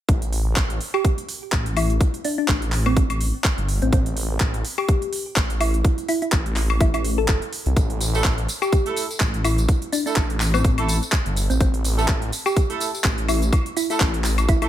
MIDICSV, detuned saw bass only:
0, 0, Header, 1, 2, 480
1, 0, Start_track
1, 0, Key_signature, 0, "minor"
1, 0, Tempo, 480000
1, 86, Time_signature, 4, 2, 24, 8
1, 14687, End_track
2, 0, Start_track
2, 0, Title_t, "Detuned saw bass"
2, 0, Program_c, 0, 39
2, 86, Note_on_c, 0, 33, 96
2, 549, Note_off_c, 0, 33, 0
2, 566, Note_on_c, 0, 33, 99
2, 789, Note_off_c, 0, 33, 0
2, 1526, Note_on_c, 0, 33, 93
2, 1989, Note_off_c, 0, 33, 0
2, 2486, Note_on_c, 0, 33, 94
2, 2949, Note_off_c, 0, 33, 0
2, 2966, Note_on_c, 0, 33, 96
2, 3319, Note_off_c, 0, 33, 0
2, 3580, Note_on_c, 0, 31, 95
2, 3798, Note_off_c, 0, 31, 0
2, 3820, Note_on_c, 0, 33, 94
2, 3909, Note_off_c, 0, 33, 0
2, 3926, Note_on_c, 0, 33, 98
2, 4389, Note_off_c, 0, 33, 0
2, 4406, Note_on_c, 0, 33, 99
2, 4629, Note_off_c, 0, 33, 0
2, 5366, Note_on_c, 0, 33, 94
2, 5829, Note_off_c, 0, 33, 0
2, 6326, Note_on_c, 0, 33, 97
2, 6789, Note_off_c, 0, 33, 0
2, 6805, Note_on_c, 0, 33, 100
2, 7269, Note_off_c, 0, 33, 0
2, 7286, Note_on_c, 0, 31, 94
2, 7398, Note_off_c, 0, 31, 0
2, 7660, Note_on_c, 0, 36, 98
2, 7749, Note_off_c, 0, 36, 0
2, 7765, Note_on_c, 0, 33, 99
2, 8229, Note_off_c, 0, 33, 0
2, 8246, Note_on_c, 0, 33, 99
2, 8469, Note_off_c, 0, 33, 0
2, 9206, Note_on_c, 0, 33, 94
2, 9669, Note_off_c, 0, 33, 0
2, 10165, Note_on_c, 0, 33, 95
2, 10629, Note_off_c, 0, 33, 0
2, 10645, Note_on_c, 0, 33, 95
2, 10998, Note_off_c, 0, 33, 0
2, 11260, Note_on_c, 0, 31, 96
2, 11479, Note_off_c, 0, 31, 0
2, 11500, Note_on_c, 0, 33, 96
2, 11589, Note_off_c, 0, 33, 0
2, 11605, Note_on_c, 0, 33, 99
2, 12069, Note_off_c, 0, 33, 0
2, 12085, Note_on_c, 0, 33, 95
2, 12309, Note_off_c, 0, 33, 0
2, 13046, Note_on_c, 0, 33, 97
2, 13509, Note_off_c, 0, 33, 0
2, 14006, Note_on_c, 0, 33, 95
2, 14469, Note_off_c, 0, 33, 0
2, 14486, Note_on_c, 0, 33, 99
2, 14687, Note_off_c, 0, 33, 0
2, 14687, End_track
0, 0, End_of_file